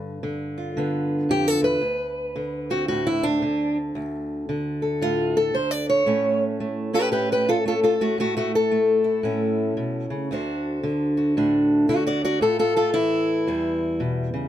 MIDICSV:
0, 0, Header, 1, 2, 480
1, 0, Start_track
1, 0, Tempo, 529568
1, 1653, Time_signature, 4, 2, 24, 8
1, 13127, End_track
2, 0, Start_track
2, 0, Title_t, "Steel-string acoustic guitar"
2, 0, Program_c, 0, 25
2, 0, Note_on_c, 0, 43, 70
2, 0, Note_on_c, 0, 50, 57
2, 198, Note_off_c, 0, 50, 0
2, 209, Note_on_c, 0, 50, 66
2, 522, Note_on_c, 0, 65, 47
2, 696, Note_off_c, 0, 50, 0
2, 696, Note_on_c, 0, 50, 65
2, 708, Note_on_c, 0, 59, 53
2, 1166, Note_off_c, 0, 43, 0
2, 1170, Note_on_c, 0, 41, 61
2, 1185, Note_on_c, 0, 67, 108
2, 1338, Note_off_c, 0, 67, 0
2, 1338, Note_on_c, 0, 69, 101
2, 1462, Note_off_c, 0, 41, 0
2, 1465, Note_on_c, 0, 40, 63
2, 1483, Note_off_c, 0, 69, 0
2, 1487, Note_on_c, 0, 71, 96
2, 1634, Note_off_c, 0, 50, 0
2, 1637, Note_off_c, 0, 65, 0
2, 1639, Note_off_c, 0, 40, 0
2, 1640, Note_off_c, 0, 59, 0
2, 1643, Note_on_c, 0, 38, 72
2, 2135, Note_on_c, 0, 50, 68
2, 2449, Note_on_c, 0, 60, 47
2, 2452, Note_off_c, 0, 71, 0
2, 2454, Note_on_c, 0, 66, 90
2, 2603, Note_off_c, 0, 66, 0
2, 2613, Note_on_c, 0, 66, 90
2, 2622, Note_on_c, 0, 45, 71
2, 2774, Note_off_c, 0, 66, 0
2, 2779, Note_on_c, 0, 64, 99
2, 2931, Note_on_c, 0, 62, 114
2, 2937, Note_off_c, 0, 64, 0
2, 3091, Note_off_c, 0, 50, 0
2, 3099, Note_off_c, 0, 45, 0
2, 3102, Note_on_c, 0, 50, 64
2, 3414, Note_off_c, 0, 62, 0
2, 3562, Note_off_c, 0, 60, 0
2, 3571, Note_off_c, 0, 38, 0
2, 3582, Note_on_c, 0, 38, 74
2, 4057, Note_off_c, 0, 50, 0
2, 4068, Note_on_c, 0, 50, 64
2, 4370, Note_on_c, 0, 69, 46
2, 4545, Note_on_c, 0, 45, 69
2, 4553, Note_on_c, 0, 65, 93
2, 4862, Note_off_c, 0, 69, 0
2, 4865, Note_on_c, 0, 69, 91
2, 4866, Note_off_c, 0, 65, 0
2, 5011, Note_off_c, 0, 50, 0
2, 5021, Note_on_c, 0, 50, 58
2, 5022, Note_off_c, 0, 45, 0
2, 5022, Note_off_c, 0, 69, 0
2, 5027, Note_on_c, 0, 72, 89
2, 5174, Note_off_c, 0, 72, 0
2, 5174, Note_on_c, 0, 74, 91
2, 5337, Note_off_c, 0, 74, 0
2, 5343, Note_on_c, 0, 73, 100
2, 5494, Note_off_c, 0, 50, 0
2, 5494, Note_on_c, 0, 45, 72
2, 5498, Note_on_c, 0, 57, 49
2, 5501, Note_off_c, 0, 38, 0
2, 5506, Note_on_c, 0, 61, 50
2, 5821, Note_off_c, 0, 73, 0
2, 5981, Note_off_c, 0, 57, 0
2, 5985, Note_on_c, 0, 57, 61
2, 6281, Note_off_c, 0, 61, 0
2, 6285, Note_on_c, 0, 61, 46
2, 6292, Note_on_c, 0, 67, 79
2, 6296, Note_on_c, 0, 71, 92
2, 6440, Note_off_c, 0, 67, 0
2, 6447, Note_off_c, 0, 71, 0
2, 6451, Note_on_c, 0, 67, 82
2, 6454, Note_off_c, 0, 45, 0
2, 6458, Note_on_c, 0, 45, 66
2, 6459, Note_on_c, 0, 71, 92
2, 6615, Note_off_c, 0, 67, 0
2, 6618, Note_off_c, 0, 71, 0
2, 6635, Note_on_c, 0, 67, 84
2, 6639, Note_on_c, 0, 71, 93
2, 6782, Note_off_c, 0, 67, 0
2, 6785, Note_on_c, 0, 65, 81
2, 6788, Note_off_c, 0, 71, 0
2, 6792, Note_on_c, 0, 69, 98
2, 6851, Note_off_c, 0, 65, 0
2, 6934, Note_off_c, 0, 57, 0
2, 6938, Note_on_c, 0, 57, 61
2, 6944, Note_off_c, 0, 69, 0
2, 6957, Note_on_c, 0, 65, 80
2, 6961, Note_on_c, 0, 69, 87
2, 6996, Note_off_c, 0, 65, 0
2, 7098, Note_off_c, 0, 69, 0
2, 7102, Note_on_c, 0, 65, 78
2, 7110, Note_on_c, 0, 69, 90
2, 7188, Note_off_c, 0, 65, 0
2, 7257, Note_off_c, 0, 57, 0
2, 7261, Note_on_c, 0, 57, 76
2, 7264, Note_off_c, 0, 69, 0
2, 7265, Note_on_c, 0, 66, 93
2, 7400, Note_off_c, 0, 61, 0
2, 7404, Note_off_c, 0, 45, 0
2, 7415, Note_on_c, 0, 45, 75
2, 7420, Note_off_c, 0, 57, 0
2, 7422, Note_off_c, 0, 66, 0
2, 7431, Note_on_c, 0, 57, 86
2, 7438, Note_on_c, 0, 66, 93
2, 7572, Note_off_c, 0, 57, 0
2, 7580, Note_off_c, 0, 66, 0
2, 7583, Note_on_c, 0, 57, 84
2, 7591, Note_on_c, 0, 66, 93
2, 7741, Note_off_c, 0, 57, 0
2, 7745, Note_off_c, 0, 66, 0
2, 7753, Note_on_c, 0, 69, 102
2, 7898, Note_on_c, 0, 57, 65
2, 8195, Note_on_c, 0, 64, 47
2, 8357, Note_off_c, 0, 45, 0
2, 8368, Note_on_c, 0, 45, 71
2, 8381, Note_on_c, 0, 61, 51
2, 8851, Note_off_c, 0, 45, 0
2, 8855, Note_on_c, 0, 47, 63
2, 9153, Note_off_c, 0, 47, 0
2, 9157, Note_on_c, 0, 49, 63
2, 9184, Note_off_c, 0, 69, 0
2, 9317, Note_off_c, 0, 61, 0
2, 9336, Note_off_c, 0, 64, 0
2, 9337, Note_off_c, 0, 49, 0
2, 9344, Note_on_c, 0, 38, 75
2, 9350, Note_off_c, 0, 57, 0
2, 9353, Note_on_c, 0, 50, 51
2, 9359, Note_on_c, 0, 62, 51
2, 9361, Note_on_c, 0, 66, 53
2, 9369, Note_on_c, 0, 72, 54
2, 9809, Note_off_c, 0, 50, 0
2, 9820, Note_on_c, 0, 50, 70
2, 10116, Note_off_c, 0, 66, 0
2, 10127, Note_on_c, 0, 66, 47
2, 10300, Note_off_c, 0, 62, 0
2, 10306, Note_on_c, 0, 45, 70
2, 10310, Note_on_c, 0, 62, 56
2, 10766, Note_off_c, 0, 66, 0
2, 10767, Note_off_c, 0, 50, 0
2, 10778, Note_on_c, 0, 50, 67
2, 10778, Note_on_c, 0, 66, 85
2, 10780, Note_off_c, 0, 45, 0
2, 10789, Note_off_c, 0, 72, 0
2, 10789, Note_on_c, 0, 74, 105
2, 10925, Note_off_c, 0, 66, 0
2, 10932, Note_off_c, 0, 74, 0
2, 10936, Note_on_c, 0, 66, 82
2, 10943, Note_on_c, 0, 74, 100
2, 11088, Note_off_c, 0, 66, 0
2, 11092, Note_off_c, 0, 74, 0
2, 11099, Note_on_c, 0, 66, 85
2, 11103, Note_on_c, 0, 74, 99
2, 11239, Note_off_c, 0, 62, 0
2, 11248, Note_on_c, 0, 45, 77
2, 11255, Note_off_c, 0, 50, 0
2, 11256, Note_off_c, 0, 66, 0
2, 11256, Note_off_c, 0, 74, 0
2, 11257, Note_off_c, 0, 38, 0
2, 11260, Note_on_c, 0, 69, 97
2, 11264, Note_on_c, 0, 65, 82
2, 11403, Note_off_c, 0, 65, 0
2, 11407, Note_off_c, 0, 69, 0
2, 11414, Note_on_c, 0, 65, 90
2, 11418, Note_on_c, 0, 69, 105
2, 11559, Note_off_c, 0, 65, 0
2, 11564, Note_off_c, 0, 69, 0
2, 11570, Note_on_c, 0, 65, 85
2, 11575, Note_on_c, 0, 69, 98
2, 11722, Note_off_c, 0, 69, 0
2, 11726, Note_on_c, 0, 64, 114
2, 11731, Note_off_c, 0, 65, 0
2, 11731, Note_on_c, 0, 52, 69
2, 12209, Note_off_c, 0, 45, 0
2, 12213, Note_on_c, 0, 40, 76
2, 12220, Note_on_c, 0, 55, 54
2, 12687, Note_off_c, 0, 64, 0
2, 12689, Note_on_c, 0, 47, 66
2, 12989, Note_off_c, 0, 47, 0
2, 12994, Note_on_c, 0, 49, 62
2, 13127, Note_off_c, 0, 40, 0
2, 13127, Note_off_c, 0, 49, 0
2, 13127, Note_off_c, 0, 52, 0
2, 13127, Note_off_c, 0, 55, 0
2, 13127, End_track
0, 0, End_of_file